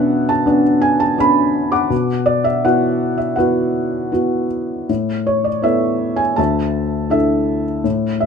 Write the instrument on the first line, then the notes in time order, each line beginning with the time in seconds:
felt piano
Already playing: B2 B3 C#4 D4 D5 E5 F#5
0.29 A5
0.46 B3 C#4 D4
0.81 G#5
1.00 A5
1.18 B3 C#4 D4 B5
1.72 F#5 D6
1.90 B2
2.26 D5
2.44 E5
2.64 B3 E4 F#4 F#5
3.18 E5
3.36 B3 E4 F#4 B4 F#5
4.12 B3 E4 F#4
4.89 A2
5.27 C#5
5.44 D5
5.62 B3 E4 A4 E5
6.16 G#5
6.36 D2 E5 A5
7.10 D4 E4 A4 E5
7.84 A2
8.20 E5